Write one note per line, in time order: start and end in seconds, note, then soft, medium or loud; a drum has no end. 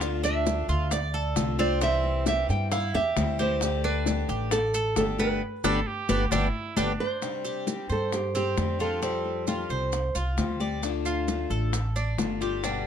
0.00 0.63 D2 medium
0.00 0.44 D3 medium
0.00 0.46 A3 medium
0.00 0.46 D4 medium
0.00 0.23 F4 medium
0.00 0.46 F4 medium
0.00 0.24 F5 medium
0.00 high bongo medium
0.00 maracas medium
0.24 0.67 D4 medium
0.24 0.94 E5 loud
0.24 high conga soft
0.24 maracas medium
0.46 0.90 D3 soft
0.46 0.90 A3 medium
0.46 0.90 D4 medium
0.46 0.90 F4 medium
0.46 high bongo medium
0.46 high conga medium
0.46 maracas medium
0.68 1.32 D2 medium
0.68 0.91 F4 medium
0.68 high conga soft
0.68 maracas soft
0.91 1.13 D5 medium
0.91 1.56 D5 medium
0.91 muted steel-string acoustic guitar stroke medium
0.91 high bongo medium
0.91 high conga soft
0.91 maracas medium
1.14 1.58 A4 medium
1.14 high conga soft
1.36 2.43 C2 medium
1.36 1.58 D3 medium
1.36 1.58 A3 medium
1.36 1.58 D4 medium
1.36 1.57 F4 medium
1.36 high bongo medium
1.36 low bongo medium
1.36 high conga medium
1.36 maracas medium
1.59 1.81 A3 medium
1.59 1.80 C4 medium
1.59 1.81 D4 medium
1.59 1.81 F4 medium
1.59 1.81 D5 medium
1.59 high conga medium
1.59 maracas soft
1.81 2.26 C3 medium
1.81 2.26 E3 medium
1.81 2.26 G3 medium
1.81 2.25 C4 medium
1.81 2.26 C4 medium
1.81 2.27 E4 medium
1.81 2.24 E5 medium
1.81 high bongo medium
1.81 high conga soft
1.81 maracas medium
2.04 high bongo soft
2.04 high conga soft
2.26 2.70 E3 soft
2.26 2.71 G3 medium
2.26 2.71 C4 medium
2.26 2.71 E4 medium
2.26 2.70 G4 medium
2.26 2.50 E5 loud
2.26 high bongo medium
2.26 high conga medium
2.26 maracas medium
2.49 2.91 G2 medium
2.49 2.71 G5 medium
2.49 high bongo soft
2.49 high conga soft
2.49 maracas soft
2.71 2.94 E4 medium
2.71 2.93 F5 medium
2.71 muted steel-string acoustic guitar stroke medium
2.71 high bongo medium
2.71 high conga soft
2.71 maracas medium
2.94 3.15 E2 medium
2.94 3.38 G4 medium
2.94 3.37 E5 loud
2.94 high bongo soft
2.94 high conga soft
3.16 4.23 D2 medium
3.16 3.38 E3 medium
3.16 3.39 G3 medium
3.16 3.39 C4 medium
3.16 3.38 E4 medium
3.16 high bongo medium
3.16 low bongo medium
3.16 high conga medium
3.16 maracas medium
3.39 3.61 E3 medium
3.39 3.61 G3 medium
3.39 3.61 C4 medium
3.39 3.61 E4 medium
3.39 3.83 G4 medium
3.39 3.84 C5 medium
3.39 high conga medium
3.39 maracas soft
3.61 4.05 D3 medium
3.61 4.06 A3 medium
3.61 4.06 D4 medium
3.61 4.07 G4 medium
3.61 high bongo medium
3.61 high conga soft
3.61 maracas medium
3.84 4.28 D4 medium
3.84 4.52 B4 medium
3.84 high conga soft
4.06 4.51 D3 soft
4.06 4.51 A3 soft
4.06 4.51 D4 medium
4.06 4.52 G4 medium
4.06 high bongo medium
4.06 high conga medium
4.06 maracas medium
4.29 4.93 A1 medium
4.29 4.51 G4 medium
4.29 high conga soft
4.29 maracas soft
4.51 4.94 A4 medium
4.51 4.74 D5 medium
4.51 muted steel-string acoustic guitar stroke medium
4.51 high bongo medium
4.51 high conga soft
4.51 maracas medium
4.74 5.18 A4 medium
4.74 high conga soft
4.74 maracas medium
4.96 5.39 G1 medium
4.96 5.18 D3 medium
4.96 5.19 A3 medium
4.96 5.18 D4 medium
4.96 5.17 G4 medium
4.96 5.04 A4 medium
4.96 high bongo medium
4.96 low bongo medium
4.96 high conga medium
4.96 maracas medium
5.18 5.41 A3 soft
5.18 5.41 B3 medium
5.18 5.41 D4 medium
5.18 5.41 G4 medium
5.18 6.73 B4 medium
5.18 high conga medium
5.18 maracas soft
5.64 5.81 G1 medium
5.64 5.79 D3 medium
5.64 5.79 G3 medium
5.64 5.79 B3 loud
5.64 5.79 D4 medium
5.64 5.79 G4 medium
5.64 5.89 A4 medium
5.64 5.79 B4 loud
5.64 low bongo medium
5.64 high conga loud
5.64 maracas loud
5.87 6.33 G4 loud
6.09 6.26 G1 medium
6.09 6.24 D3 medium
6.09 6.24 G3 medium
6.09 6.24 B3 medium
6.09 6.24 D4 medium
6.09 6.24 G4 medium
6.09 6.24 B4 medium
6.09 low bongo medium
6.09 high conga loud
6.09 maracas loud
6.31 6.49 G1 loud
6.31 6.46 D3 loud
6.31 6.46 G3 loud
6.31 6.46 B3 loud
6.31 6.46 D4 loud
6.31 6.79 E4 medium
6.31 6.46 G4 medium
6.31 6.46 B4 medium
6.31 low bongo loud
6.31 high conga loud
6.31 maracas medium
6.77 6.94 G1 medium
6.77 6.91 D3 loud
6.77 6.91 G3 loud
6.77 6.92 B3 medium
6.77 6.91 D4 medium
6.77 7.22 D4 medium
6.77 6.91 G4 loud
6.77 6.91 B4 medium
6.77 low bongo loud
6.77 high conga medium
6.77 maracas medium
7.00 7.64 C5 loud
7.22 7.66 C3 medium
7.22 7.65 G3 medium
7.22 7.66 C4 medium
7.22 7.66 D4 medium
7.22 7.67 G4 medium
7.22 high bongo medium
7.22 high conga soft
7.22 maracas medium
7.44 7.88 G4 medium
7.44 high conga soft
7.44 maracas medium
7.67 8.11 G3 soft
7.67 8.11 C4 soft
7.67 8.11 D4 soft
7.67 8.12 G4 soft
7.67 high bongo medium
7.67 high conga medium
7.67 maracas medium
7.89 8.53 G2 medium
7.89 8.14 A4 medium
7.89 8.33 C5 medium
7.89 high conga soft
7.89 maracas soft
8.12 8.34 G4 medium
8.12 muted steel-string acoustic guitar stroke medium
8.12 high bongo medium
8.12 high conga soft
8.12 maracas medium
8.35 8.79 C4 medium
8.35 8.78 G4 medium
8.35 high conga soft
8.35 maracas medium
8.57 9.64 F2 medium
8.57 8.79 G3 soft
8.57 8.79 C4 soft
8.57 8.79 D4 soft
8.57 8.78 G4 medium
8.57 high bongo medium
8.57 low bongo medium
8.57 high conga medium
8.57 maracas medium
8.79 9.01 G3 soft
8.79 9.02 C4 medium
8.79 9.02 D4 medium
8.79 9.02 F4 medium
8.79 9.01 G4 medium
8.79 10.12 A4 medium
8.79 maracas soft
9.02 9.45 F3 medium
9.02 9.46 G3 medium
9.02 9.46 C4 medium
9.02 9.47 G4 medium
9.02 high bongo medium
9.02 high conga soft
9.02 maracas medium
9.25 high bongo soft
9.25 high conga soft
9.47 9.91 F3 soft
9.47 9.91 G3 soft
9.47 9.92 C4 soft
9.47 9.70 F4 medium
9.47 9.92 G4 medium
9.47 high bongo medium
9.47 high conga medium
9.47 maracas medium
9.70 10.12 C2 medium
9.70 10.14 C5 medium
9.70 high bongo soft
9.70 high conga soft
9.70 maracas soft
9.92 muted steel-string acoustic guitar stroke medium
9.92 high bongo medium
9.92 high conga soft
9.92 maracas medium
10.15 10.36 C2 medium
10.15 10.59 F4 medium
10.15 high bongo soft
10.15 high conga soft
10.15 maracas medium
10.37 11.44 D2 medium
10.37 10.59 F3 soft
10.37 10.60 G3 soft
10.37 10.60 C4 soft
10.37 10.59 G4 medium
10.37 high bongo medium
10.37 low bongo medium
10.37 high conga medium
10.37 maracas medium
10.60 10.82 G3 soft
10.60 10.82 C4 medium
10.60 10.82 G4 medium
10.60 11.04 D5 medium
10.60 high conga medium
10.60 maracas soft
10.82 11.26 D3 medium
10.82 11.27 A3 medium
10.82 11.27 D4 medium
10.82 11.28 F4 medium
10.82 high bongo medium
10.82 high conga soft
10.82 maracas medium
11.06 11.49 F4 medium
11.06 high conga soft
11.06 maracas medium
11.27 11.72 D3 soft
11.27 11.72 A3 soft
11.27 11.73 D4 soft
11.27 11.73 F4 medium
11.27 high bongo medium
11.27 high conga medium
11.27 maracas medium
11.50 12.14 A1 medium
11.50 11.94 A4 medium
11.50 high conga soft
11.50 maracas soft
11.73 muted steel-string acoustic guitar stroke medium
11.73 high bongo medium
11.73 high conga soft
11.73 maracas medium
11.96 12.40 D4 medium
11.96 high conga soft
11.96 maracas medium
12.18 12.87 G1 medium
12.18 12.40 D3 soft
12.18 12.40 A3 soft
12.18 12.40 D4 medium
12.18 12.39 F4 soft
12.18 high bongo medium
12.18 low bongo medium
12.18 high conga medium
12.18 maracas medium
12.41 12.63 A3 soft
12.41 12.63 D4 medium
12.41 12.63 F4 medium
12.41 12.63 G4 medium
12.41 maracas soft
12.63 12.87 B2 medium
12.63 12.87 D3 medium
12.63 12.87 G3 medium
12.63 12.87 B3 medium
12.63 12.87 D4 medium
12.63 12.87 G4 medium
12.63 high bongo medium
12.63 high conga soft
12.63 maracas medium